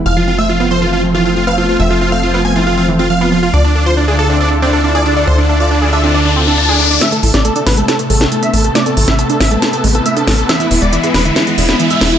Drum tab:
HH |----------------|----------------|----------------|----------------|
SD |----------------|----------------|----------------|----------------|

HH |xxoxxxoxxxoxxxox|xxoxxxoxxxoxxxox|xxoxxxoxxxo-xxox|
SD |o--o--o-o--o----|o--o--o-o-----o-|o-----o-o--o--o-|